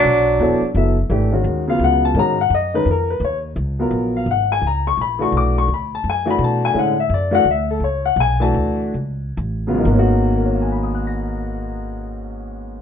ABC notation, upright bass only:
X:1
M:3/4
L:1/8
Q:"Swing" 1/4=170
K:G#dor
V:1 name="Upright bass" clef=bass
B,,,2 =E,,, z F,,,2 | G,,,2 D,,2 C,,2 | G,,2 F,,2 E,,2 | D,,2 C,,2 A,,,2 |
G,,,2 C,,2 A,,,2 | B,,,2 =D,,2 F,,2 | B,,2 =A,,2 F,,2 | =D,,2 C,,2 B,,,2 |
=D,,2 C,,2 =A,,,2 | G,,,6- | G,,,6 |]